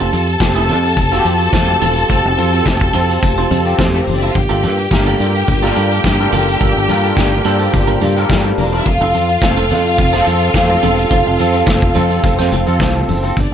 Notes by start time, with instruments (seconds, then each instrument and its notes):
Already playing: french horn section F3 C4 G4, string section A4 A5
0.00 fingered electric bass F1, clean electric guitar C4 F4 A4, closed hi-hat
0.12 fingered electric bass F2, clean electric guitar C4 F4 A4, closed hi-hat, muted conga
0.27 muted clean electric guitar stroke, closed hi-hat
0.40 fingered electric bass F1, tine electric piano C4 F4 G4, muted clean electric guitar stroke, kick, snare, clap, closed hi-hat, high conga
0.48 tine electric piano A4
0.55 clean electric guitar C4 F4 A4
0.68 fingered electric bass F2, clean electric guitar C4 F4 A4, closed hi-hat
0.84 muted clean electric guitar stroke, closed hi-hat
0.97 fingered electric bass F1, muted clean electric guitar stroke, kick, closed hi-hat, muted conga, low conga
1.11 tine electric piano C4 F4 F#4, clean electric guitar C4 F4 A4, snare
1.19 tine electric piano G4
1.25 fingered electric bass F2, clean electric guitar C4 F4 A4, closed hi-hat, muted conga
1.39 muted clean electric guitar stroke, closed hi-hat
1.53 fingered electric bass F2, kick, snare, clap, closed hi-hat, high conga
1.68 tine electric piano C4 F4 A4, muted clean electric guitar stroke
1.81 fingered electric bass E1, clean electric guitar C4 F4 A4, open hi-hat, high conga
1.96 muted clean electric guitar stroke, closed hi-hat
2.09 fingered electric bass F1, clean electric guitar C4 F4 A4, kick, closed hi-hat, muted conga
2.25 fingered electric bass F1
2.37 fingered electric bass F2, tine electric piano C4 F4 A4, clean electric guitar C4 F4 A4, closed hi-hat, muted conga
2.53 clean electric guitar C4 F4 A4, closed hi-hat
2.66 fingered electric bass F1, muted clean electric guitar stroke, kick, snare, clap, closed hi-hat, high conga
2.81 muted clean electric guitar stroke, kick, closed hi-hat
2.93 fingered electric bass F2, tine electric piano C4 F4 A4, clean electric guitar C4 F4 A4, closed hi-hat
3.08 clean electric guitar C4 F4 A4, closed hi-hat
3.23 fingered electric bass F1, muted clean electric guitar stroke, kick, closed hi-hat, muted conga, low conga
3.38 clean electric guitar C4 F4 C5
3.50 fingered electric bass F2, clean electric guitar C4 F4 A4, closed hi-hat, muted conga, low conga
3.65 tine electric piano C4 F4 G4, muted clean electric guitar stroke, closed hi-hat
3.78 fingered electric bass F2, muted clean electric guitar stroke, kick, snare, clap, closed hi-hat, high conga
3.94 string section A3 A4, muted clean electric guitar stroke, closed hi-hat
4.01 string section A#3 A#4
4.07 fingered electric bass F#1, string section C4 C5, open hi-hat, high conga
4.14 string section D4 D5
4.22 tine electric piano C4 F4 A4, string section E4 E5, muted clean electric guitar stroke, closed hi-hat
4.28 string section F4 F5
4.35 fingered electric bass G1, french horn section G3 A#3 F4, string section G4 G5, muted clean electric guitar stroke, kick, closed hi-hat, muted conga
4.49 fingered electric bass G1, clean electric guitar A#3 F4 A4, closed hi-hat
4.63 fingered electric bass G2, clean electric guitar A#3 F4 A4, closed hi-hat, muted conga
4.78 muted clean electric guitar stroke, closed hi-hat
4.91 fingered electric bass G1, tine electric piano G3 D4 F4 A4 A#4, muted clean electric guitar stroke, kick, snare, clap, closed hi-hat, high conga
5.07 clean electric guitar A#3 F4 A4
5.20 fingered electric bass G2, clean electric guitar A#3 F4 A4, closed hi-hat
5.35 muted clean electric guitar stroke, closed hi-hat
5.48 fingered electric bass G1, muted clean electric guitar stroke, kick, closed hi-hat, muted conga, low conga
5.62 tine electric piano G3 D4 F4 A4 A#4, clean electric guitar A#3 F4 A4, snare
5.76 fingered electric bass G2, clean electric guitar A#3 F4 A4, closed hi-hat
5.91 muted clean electric guitar stroke, closed hi-hat
6.04 fingered electric bass G2, kick, snare, clap, closed hi-hat, high conga
6.19 tine electric piano G3 D4 F4 A4 A#4, muted clean electric guitar stroke, closed hi-hat
6.32 fingered electric bass F#1, clean electric guitar A#3 F4 A4, open hi-hat, high conga
6.48 muted clean electric guitar stroke, closed hi-hat
6.61 fingered electric bass G1, clean electric guitar A#3 F4 A4, kick, closed hi-hat, muted conga
6.76 fingered electric bass G1
6.88 fingered electric bass G2, tine electric piano G3 D4 F4 A4 A#4, clean electric guitar A#3 F4 A4, closed hi-hat, muted conga
7.03 clean electric guitar A#3 F4 A4, closed hi-hat
7.17 fingered electric bass G1, muted clean electric guitar stroke, kick, snare, clap, closed hi-hat, high conga
7.32 muted clean electric guitar stroke
7.45 fingered electric bass G2, tine electric piano G3 D4 F4 A4 C5, clean electric guitar A#3 F4 A4, closed hi-hat
7.59 clean electric guitar A#3 F4 A4, closed hi-hat
7.73 fingered electric bass G1, muted clean electric guitar stroke, kick, closed hi-hat, muted conga, low conga
7.87 clean electric guitar A#3 F4 A#4
8.01 fingered electric bass G2, clean electric guitar A#3 F4 A4, closed hi-hat, muted conga, low conga
8.15 tine electric piano G3 D4 F4 A4 A#4, muted clean electric guitar stroke, closed hi-hat
8.29 fingered electric bass G2, muted clean electric guitar stroke, kick, snare, clap, closed hi-hat, high conga
8.45 muted clean electric guitar stroke
8.58 fingered electric bass E1, string section A#3 A#4, open hi-hat, high conga
8.66 string section C4 C5
8.72 tine electric piano G3 D4 F4 A4 A#4, string section D4 D5, muted clean electric guitar stroke, closed hi-hat
8.79 string section E4 E5
8.86 fingered electric bass F1, french horn section F3 C4 A4, string section F4 F5, muted clean electric guitar stroke, kick, closed hi-hat, muted conga
9.01 fingered electric bass F1, clean electric guitar C4 F4 A4
9.14 fingered electric bass F2, clean electric guitar C4 F4 A4, closed hi-hat, muted conga
9.28 muted clean electric guitar stroke, closed hi-hat
9.42 fingered electric bass F1, tine electric piano C4 F4 A4, muted clean electric guitar stroke, kick, snare, clap, closed hi-hat, high conga
9.57 clean electric guitar C4 F4 A4
9.70 fingered electric bass F2, clean electric guitar C4 F4 A4, closed hi-hat
9.85 muted clean electric guitar stroke, closed hi-hat
9.98 fingered electric bass F1, muted clean electric guitar stroke, kick, closed hi-hat, muted conga, low conga
10.13 tine electric piano C4 F4 G#4, clean electric guitar C4 F4 A4, snare, closed hi-hat
10.21 tine electric piano A4
10.26 fingered electric bass F2, clean electric guitar C4 F4 A4, closed hi-hat, muted conga
10.41 muted clean electric guitar stroke, closed hi-hat
10.54 fingered electric bass F2, kick, snare, clap, closed hi-hat, high conga
10.69 tine electric piano C4 F4 G4, muted clean electric guitar stroke, closed hi-hat
10.77 tine electric piano A4
10.82 fingered electric bass E1, clean electric guitar C4 F4 A4, open hi-hat, high conga
10.98 muted clean electric guitar stroke, closed hi-hat
11.10 fingered electric bass F1, clean electric guitar C4 F4 A4, kick, closed hi-hat, muted conga
11.26 fingered electric bass F1
11.39 fingered electric bass F2, tine electric piano C4 F4 A4, clean electric guitar C4 F4 A4, closed hi-hat, muted conga
11.53 clean electric guitar C4 F4 A4, closed hi-hat
11.67 fingered electric bass F1, muted clean electric guitar stroke, kick, snare, clap, closed hi-hat, high conga
11.82 muted clean electric guitar stroke, kick
11.95 fingered electric bass F2, clean electric guitar C4 F4 A4, tine electric piano C4 F4 A4, closed hi-hat, low conga
12.10 clean electric guitar C4 F4 A4, closed hi-hat
12.24 fingered electric bass F1, muted clean electric guitar stroke, kick, closed hi-hat, muted conga, low conga
12.39 fingered electric bass F2, clean electric guitar C4 F4 C5, snare
12.52 fingered electric bass F1, clean electric guitar C4 F4 A4, closed hi-hat, low conga
12.66 fingered electric bass F2, tine electric piano C4 F4 A4, muted clean electric guitar stroke, closed hi-hat
12.80 fingered electric bass C2, muted clean electric guitar stroke, kick, snare, clap, closed hi-hat, high conga
12.95 muted clean electric guitar stroke, closed hi-hat
13.08 fingered electric bass F#1, open hi-hat, high conga
13.22 tine electric piano C4 F4 A4, muted clean electric guitar stroke, closed hi-hat
13.37 fingered electric bass G1, french horn section G3 A#3 F4 G4, string section D4 D5, kick, closed hi-hat, muted conga